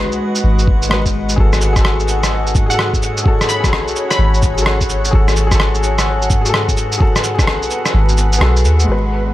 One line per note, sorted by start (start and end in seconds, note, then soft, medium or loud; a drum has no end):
0.00 0.20 B1 medium
0.00 0.89 G#3 medium
0.00 0.91 F#4 medium
0.00 8.89 F#4 medium
0.00 0.93 B4 loud
0.00 1.38 B4 medium
0.00 2.47 D#5 medium
0.00 8.89 F#5 medium
0.00 9.34 F#5 medium
0.12 shaker soft
0.35 shaker medium
0.44 1.37 G#1 medium
0.59 shaker soft
0.68 kick loud
0.82 shaker soft
0.89 1.35 G#3 medium
0.89 1.36 F#4 medium
0.89 cross-stick loud
0.93 1.37 B4 medium
1.06 kick medium
1.06 shaker soft
1.29 shaker medium
1.36 2.56 G#1 loud
1.36 1.73 F#4 medium
1.36 1.71 G#4 medium
1.36 kick loud
1.40 1.74 A4 loud
1.53 cross-stick medium
1.53 shaker soft
1.61 cabasa medium
1.73 2.67 F#4 medium
1.73 2.65 G#4 medium
1.73 kick loud
1.73 cross-stick soft
1.73 shaker soft
1.81 2.69 A4 loud
1.85 cross-stick loud
2.00 shaker soft
2.07 5.63 C#5 medium
2.07 cabasa medium
2.23 cross-stick medium
2.23 shaker soft
2.47 shaker soft
2.55 3.65 G#2 loud
2.55 kick loud
2.55 cabasa medium
2.66 3.23 F#4 medium
2.66 3.21 G#4 medium
2.66 2.94 F#5 medium
2.71 3.25 A4 medium
2.71 shaker medium
2.79 cross-stick loud
2.94 kick medium
2.94 shaker soft
3.03 cabasa medium
3.17 shaker medium
3.24 3.60 F#4 medium
3.24 3.59 G#4 medium
3.24 3.61 A4 medium
3.24 kick loud
3.41 cross-stick medium
3.41 shaker soft
3.49 3.74 B5 medium
3.49 cabasa medium
3.60 3.95 B1 medium
3.60 4.54 F#4 medium
3.60 4.52 G#4 medium
3.60 kick loud
3.60 cross-stick medium
3.60 shaker soft
3.68 4.56 A4 medium
3.73 cross-stick medium
3.88 shaker soft
3.96 cabasa medium
4.10 4.75 B5 medium
4.10 cross-stick medium
4.10 shaker soft
4.19 5.11 G#1 medium
4.34 shaker soft
4.43 kick medium
4.43 cabasa medium
4.54 5.11 F#4 medium
4.54 5.09 G#4 medium
4.54 shaker medium
4.62 5.13 A4 medium
4.66 cross-stick loud
4.81 kick medium
4.81 shaker soft
4.90 cabasa medium
5.05 shaker medium
5.11 6.32 G#1 loud
5.11 5.47 F#4 medium
5.11 5.45 G#4 medium
5.11 5.49 A4 loud
5.11 kick loud
5.28 cross-stick medium
5.28 shaker soft
5.37 cabasa medium
5.47 6.39 G#4 medium
5.51 6.41 F#4 medium
5.51 9.34 B4 medium
5.51 kick loud
5.51 cross-stick medium
5.51 shaker medium
5.55 6.43 A4 loud
5.60 cross-stick loud
5.75 shaker soft
5.83 cabasa medium
5.99 cross-stick medium
5.99 shaker medium
6.22 shaker soft
6.30 7.40 G#2 loud
6.30 kick medium
6.30 cabasa medium
6.41 6.98 F#4 medium
6.41 6.96 G#4 medium
6.46 7.00 A4 medium
6.46 shaker medium
6.54 cross-stick loud
6.69 kick medium
6.69 shaker soft
6.77 cabasa medium
6.92 shaker medium
6.98 7.35 F#4 medium
6.98 7.33 G#4 medium
6.98 7.36 A4 medium
6.98 kick loud
7.16 cross-stick medium
7.16 shaker soft
7.24 cabasa medium
7.34 8.29 F#4 medium
7.34 8.27 G#4 medium
7.39 7.69 B1 loud
7.39 8.31 A4 medium
7.39 kick loud
7.39 cross-stick medium
7.39 shaker medium
7.47 cross-stick loud
7.62 shaker soft
7.71 cabasa medium
7.86 cross-stick medium
7.86 shaker medium
7.94 8.40 G#1 medium
8.09 shaker soft
8.18 cabasa medium
8.33 shaker medium
8.39 8.65 B1 medium
8.39 8.86 F#4 medium
8.39 8.84 G#4 medium
8.39 cross-stick loud
8.43 8.87 A4 loud
8.56 shaker soft
8.64 8.86 D#2 medium
8.64 cabasa medium
8.80 9.34 G#3 medium
8.80 shaker medium
8.87 9.34 G#1 medium
8.87 9.34 D#4 medium
8.87 9.34 F#4 medium
8.87 9.34 D#5 medium
8.92 9.34 B4 medium
9.03 shaker soft
9.26 shaker soft